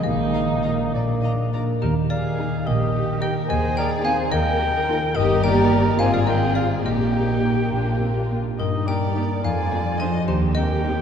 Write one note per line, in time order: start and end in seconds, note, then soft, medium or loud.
0.00 1.34 A#3 medium
0.00 0.33 D#4 soft
0.00 0.96 D#5 medium
0.00 0.91 D#5 medium
0.00 0.89 D#5 medium
0.04 0.78 A#1 medium
0.04 0.94 A#2 medium
0.04 0.94 D#3 medium
0.04 0.92 D#4 medium
0.04 0.92 F5 medium
0.33 0.96 D#4 soft
0.33 0.42 D#5 soft
0.33 0.42 F5 soft
0.33 0.41 A#5 soft
0.63 1.52 F4 soft
0.63 1.53 A#4 soft
0.63 0.72 D#5 soft
0.63 0.71 F5 soft
0.63 0.71 A#5 soft
0.93 1.67 A#1 medium
0.93 1.85 A#2 medium
0.93 1.51 D5 medium
0.93 1.03 D5 medium
0.93 1.51 F5 medium
1.23 1.84 D4 soft
1.23 1.31 D#5 medium
1.23 1.32 A#5 soft
1.53 1.84 F4 soft
1.53 3.53 A#4 soft
1.53 1.61 D5 medium
1.53 1.61 A#5 soft
1.81 2.50 D#2 medium
1.81 3.50 D#3 medium
1.81 1.89 D#4 medium
1.81 2.08 G4 medium
1.81 1.95 A#4 medium
2.10 2.65 A#3 soft
2.10 2.65 G#4 medium
2.10 2.62 D5 medium
2.10 2.68 F5 medium
2.38 2.59 D#4 soft
2.38 2.93 D#4 soft
2.38 2.59 G4 medium
2.38 2.59 A#4 medium
2.66 3.33 A#1 medium
2.66 3.21 A#3 soft
2.66 3.46 G4 medium
2.66 3.21 G4 medium
2.66 3.18 A#4 medium
2.66 3.21 D#5 medium
2.94 3.77 D#4 soft
3.21 3.52 A#3 soft
3.21 3.42 D#4 medium
3.21 3.42 G4 medium
3.21 3.50 A#4 medium
3.21 3.43 A#4 medium
3.21 3.48 D#5 medium
3.21 3.34 G5 medium
3.48 4.16 D#2 medium
3.48 4.31 D#3 medium
3.48 4.31 G#4 medium
3.48 3.78 C5 medium
3.48 3.76 D#5 medium
3.48 3.76 G#5 medium
3.77 4.04 D#4 soft
3.77 3.90 A#4 medium
3.77 4.05 D5 medium
3.77 4.03 G5 medium
4.05 4.26 C4 medium
4.05 4.25 D#4 medium
4.05 4.59 D#4 soft
4.05 4.26 G#4 medium
4.05 4.33 C5 medium
4.05 4.35 C5 medium
4.05 4.30 F5 medium
4.05 4.17 G#5 loud
4.32 4.99 D#2 medium
4.32 5.17 D#3 medium
4.32 4.60 A#4 medium
4.32 5.14 A#4 medium
4.32 5.11 D#5 medium
4.32 5.17 G5 loud
4.60 4.87 D#4 medium
4.60 4.68 G4 medium
4.88 5.08 A#3 medium
4.88 5.08 D#4 medium
4.88 5.70 D#4 medium
4.88 4.96 F4 medium
4.88 5.08 A#4 medium
4.88 5.71 A#4 medium
5.15 5.95 G1 medium
5.15 6.02 G2 medium
5.15 5.95 A#3 medium
5.15 5.95 D#4 medium
5.15 5.98 G4 medium
5.15 5.43 G4 medium
5.15 5.41 A#4 medium
5.15 5.95 A#4 medium
5.15 5.43 D#5 medium
5.43 6.02 A#3 soft
5.43 5.98 A#4 medium
5.43 5.98 D5 medium
5.43 5.95 G5 medium
5.72 6.02 D#4 soft
5.72 6.02 A#4 medium
5.99 6.83 G#1 medium
5.99 6.87 G#2 medium
5.99 6.85 C4 medium
5.99 6.85 F4 medium
5.99 6.83 F4 medium
5.99 6.85 G#4 medium
5.99 6.05 C5 medium
5.99 6.12 F5 medium
5.99 6.13 G#5 medium
6.13 6.27 G#4 medium
6.13 6.27 D5 medium
6.13 6.20 F5 medium
6.27 6.87 C4 soft
6.27 6.55 A#4 medium
6.27 6.54 D#5 medium
6.27 6.55 G5 medium
6.55 6.87 F4 soft
6.55 6.64 G#4 medium
6.55 6.87 G#4 soft
6.55 6.82 D5 medium
6.55 6.69 F5 medium
6.85 7.70 A#1 medium
6.85 7.71 A#2 medium
6.85 7.70 A#3 medium
6.85 7.72 D#4 medium
6.85 8.13 G4 medium
6.85 7.72 G4 medium
6.85 8.27 A#4 medium
6.85 8.27 D#5 medium
6.85 8.27 G5 medium
7.14 8.01 A#3 soft
7.44 7.75 D#4 soft
7.44 7.75 G4 soft
7.72 8.37 A#1 soft
7.72 8.61 A#2 soft
7.72 7.99 D4 medium
7.72 8.38 F4 soft
8.01 8.86 A#3 soft
8.01 8.09 C4 soft
8.30 8.38 A#3 soft
8.30 8.61 D4 soft
8.30 8.62 F4 soft
8.59 9.30 G2 medium
8.59 9.46 G2 medium
8.59 9.40 D#4 medium
8.59 8.67 G4 medium
8.59 8.86 A#4 medium
8.59 8.88 D#5 medium
8.87 9.46 A#3 soft
8.87 8.95 A#3 soft
8.87 8.95 D#4 soft
8.87 8.95 G4 soft
8.87 9.43 A#4 medium
8.87 9.42 D5 medium
8.87 9.40 G5 medium
9.15 9.24 A#3 soft
9.15 9.46 D#4 soft
9.15 9.24 D#4 soft
9.15 9.23 G4 soft
9.15 9.46 G4 soft
9.44 10.14 F2 medium
9.44 10.30 F2 soft
9.44 10.28 F4 medium
9.44 9.99 D5 medium
9.44 9.96 F5 medium
9.44 9.98 G#5 medium
9.72 10.30 F3 soft
9.72 9.80 F3 soft
9.72 9.80 D4 soft
9.72 9.80 G#4 soft
9.99 10.09 F3 soft
9.99 10.30 D4 soft
9.99 10.09 D4 soft
9.99 10.08 G#4 soft
9.99 10.30 G#4 soft
9.99 10.13 C5 medium
9.99 10.27 D#5 medium
9.99 10.26 G#5 medium
10.26 10.97 D#2 medium
10.26 11.02 D#3 medium
10.26 10.34 D#4 medium
10.26 11.02 G4 medium
10.26 10.54 G4 medium
10.26 10.40 C5 medium
10.54 10.64 G3 soft
10.54 10.65 C4 soft
10.54 10.64 D#4 soft
10.54 10.82 D#4 soft
10.54 11.02 A#4 medium
10.54 11.02 D#5 medium
10.54 11.02 G5 medium
10.83 10.92 G3 medium
10.83 10.93 C4 soft
10.83 10.91 D#4 medium
10.83 11.02 D#4 soft
10.83 11.02 C5 soft